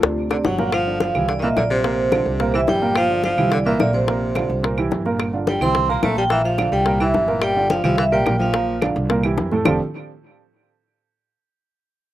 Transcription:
Already playing: tenor saxophone F3, vibraphone F4
0.02 upright bass D2, grand piano C3 C4 D4, high bongo
0.17 high conga
0.30 grand piano C3 C4 D4, tenor saxophone D3, vibraphone D5, high bongo, high conga, claves
0.45 upright bass G1, tenor saxophone F#3, vibraphone F#5, low bongo, high conga
0.58 grand piano A#2 A#3 A#4, low bongo, high conga
0.72 tenor saxophone F3, vibraphone F5, high bongo, claves
0.87 grand piano D3 D4 F4, high conga
1.00 tenor saxophone F3, vibraphone F5, high bongo, high conga
1.15 upright bass C2, grand piano E3 E4 G4, high bongo, low conga, claves
1.28 tenor saxophone D3, vibraphone D5, high bongo, high conga
1.39 grand piano A#2 A#3, tenor saxophone D#3 E3, vibraphone D#5 E5, high bongo, high conga
1.43 grand piano A#4
1.56 upright bass A#1, grand piano A#2 A#3 A#4, tenor saxophone D3, vibraphone D5, high bongo, low bongo, high conga, claves
1.70 tenor saxophone C3, vibraphone C5, high bongo, high conga
1.84 grand piano A#2 A#3 A#4, high bongo
1.98 high conga
2.12 grand piano D3 D4 F4, high bongo, high conga, claves
2.26 upright bass C2, high bongo
2.40 grand piano A#2 A#3 A#4, high bongo
2.54 grand piano E3 E4 G4, tenor saxophone E3, vibraphone E5, high bongo, high conga, claves
2.67 upright bass G1, tenor saxophone G3, vibraphone G5, high bongo, low bongo, high conga
2.82 grand piano A#2 A#3 A#4, high bongo, high conga
2.95 tenor saxophone F3, vibraphone F5, high bongo, high conga, claves
3.09 grand piano D3 D4 F4, high conga
3.24 tenor saxophone F3, vibraphone F5, high bongo, high conga
3.38 upright bass C2, grand piano E3 E4 G4, high bongo, low conga, claves
3.51 tenor saxophone D3, vibraphone D5, high bongo, high conga, low conga
3.65 grand piano A#2 A#3 A#4, tenor saxophone E3, vibraphone E5, high bongo, high conga
3.79 upright bass A#1, grand piano A#2 A#3 A#4, tenor saxophone D3, vibraphone D5, high bongo, low bongo, high conga, claves
3.93 tenor saxophone C3, vibraphone C5, high bongo, high conga
4.07 grand piano A#2 A#3 A#4, high bongo
4.21 high conga
4.35 grand piano D3 D4 F4, high bongo, high conga, claves
4.50 upright bass C2, high bongo
4.63 grand piano A#2 A#3 A#4, high bongo, high conga
4.78 grand piano E3 E4 G4, high bongo, high conga, claves
4.91 upright bass G1, high bongo, low bongo, high conga
5.05 grand piano A#2 A#3 A#4, high bongo, high conga
5.19 high bongo, high conga, claves
5.33 grand piano D3 D4 F4, high conga
5.47 tenor saxophone G3, vibraphone G5, high bongo, high conga
5.61 upright bass C2, grand piano E3 E4 G4, tenor saxophone C4, vibraphone C6, high bongo, low conga, claves
5.75 high bongo, high conga, low conga
5.89 grand piano A#2 A#3 A#4, tenor saxophone A#3, vibraphone A#5, high bongo, high conga
6.03 upright bass A#1, grand piano A#2 A#3 A#4, tenor saxophone A3, vibraphone A5, high bongo, low bongo, high conga, claves
6.16 tenor saxophone G3, vibraphone G5, high bongo, high conga
6.30 grand piano A#2 A#3 A#4, tenor saxophone E3, vibraphone E5, high bongo, high conga
6.44 tenor saxophone F3, vibraphone F5, high conga
6.58 grand piano D3 D4 F4, high bongo, high conga, claves
6.72 upright bass C2, tenor saxophone G3, vibraphone G5, high bongo
6.86 grand piano A#2 A#3 A#4, high bongo
7.00 grand piano E3 E4 G4, tenor saxophone E3, vibraphone E5, high bongo, claves
7.14 upright bass G1, high bongo, low bongo, high conga
7.28 grand piano A#2 A#3 A#4, high bongo, high conga
7.42 tenor saxophone G3, vibraphone G5, high bongo, claves
7.56 grand piano D3 D4 F4, high conga
7.70 tenor saxophone F3, vibraphone F5, high bongo, high conga
7.83 upright bass C2, grand piano E3 E4 G4, tenor saxophone F3, vibraphone F5, high bongo, low conga, claves
7.98 tenor saxophone E3, vibraphone E5, high bongo, high conga, low conga
8.12 grand piano A#2 A#3 A#4, tenor saxophone G3, vibraphone G5, high bongo, high conga
8.26 upright bass A#1, grand piano A#2 A#3 A#4, high bongo, low bongo, high conga, claves
8.39 tenor saxophone F3, vibraphone F5, high bongo, high conga
8.54 grand piano A#2 A#3 A#4, high bongo
8.68 high conga
8.82 grand piano D3 D4 F4, high bongo, high conga, claves
8.96 upright bass C2, high bongo
9.10 grand piano A#2 A#3 A#4, high bongo
9.23 grand piano E3 E4 G4, high bongo, high conga, claves
9.37 upright bass F2, high bongo, low bongo, high conga
9.51 grand piano A2 A3 A4, high bongo, high conga
9.65 upright bass F1, grand piano F3 C4 D4 F4 G4 A4, low bongo, low conga, claves

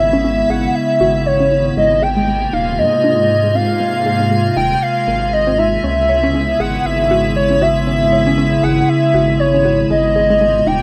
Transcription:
Already playing: detuned saw bass G#1, ambient pad C#3 G#3 B3 E4, soft synth lead E5
0.00 synth arpeggio sound C#5
0.13 synth arpeggio sound C#4
0.24 synth arpeggio sound C#4
0.50 detuned saw bass G#1, synth arpeggio sound G#4, soft synth lead F#5
0.75 soft synth lead E5
1.01 detuned saw bass G#1, synth arpeggio sound F#4
1.26 soft synth lead C#5
1.40 synth arpeggio sound C#4
1.51 synth arpeggio sound E4
1.77 detuned saw bass G#1, ambient pad C3 G#3 A#3 F4, synth arpeggio sound G#3, soft synth lead D#5
2.02 synth arpeggio sound G#4, soft synth lead G5
2.16 synth arpeggio sound G#3
2.28 synth arpeggio sound G#3
2.53 detuned saw bass D#1, synth arpeggio sound D#4, soft synth lead F5
2.79 detuned saw bass G#2, soft synth lead D#5
3.04 synth arpeggio sound D4
3.44 synth arpeggio sound G#3
3.55 synth arpeggio sound C4, soft synth lead F5
3.80 synth arpeggio sound G#3
4.06 synth arpeggio sound G#4
4.20 synth arpeggio sound G#3
4.31 synth arpeggio sound G#3
4.57 detuned saw bass D#1, synth arpeggio sound D#4, soft synth lead G5
4.82 soft synth lead F5
5.07 detuned saw bass G#1, synth arpeggio sound A#3
5.33 soft synth lead D#5
5.47 synth arpeggio sound C4
5.58 synth arpeggio sound D#4, soft synth lead E5
5.84 detuned saw bass C#2, ambient pad C#3 B3 E4, synth arpeggio sound C#4
6.09 synth arpeggio sound C#5
6.23 synth arpeggio sound C#4
6.35 synth arpeggio sound C#4
6.60 detuned saw bass G#1, synth arpeggio sound G#4, soft synth lead F#5
6.85 detuned saw bass G#1, soft synth lead E5
7.11 synth arpeggio sound F#4
7.36 soft synth lead C#5
7.50 synth arpeggio sound C#4
7.62 synth arpeggio sound F#4, soft synth lead E5
7.87 synth arpeggio sound C#4
8.13 synth arpeggio sound C#5
8.27 synth arpeggio sound C#4
8.38 synth arpeggio sound C#4
8.63 detuned saw bass G#1, synth arpeggio sound G#4, soft synth lead F#5
8.89 soft synth lead E5
9.14 detuned saw bass G#1, synth arpeggio sound F#4
9.40 soft synth lead C#5
9.54 synth arpeggio sound C#4
9.65 synth arpeggio sound F#4
9.90 detuned saw bass G#1, ambient pad C3 A#3 F4, synth arpeggio sound G#3, soft synth lead D#5
10.16 synth arpeggio sound G#4
10.30 synth arpeggio sound G#3
10.41 synth arpeggio sound G#3
10.67 detuned saw bass D#1, synth arpeggio sound D#4, soft synth lead G5

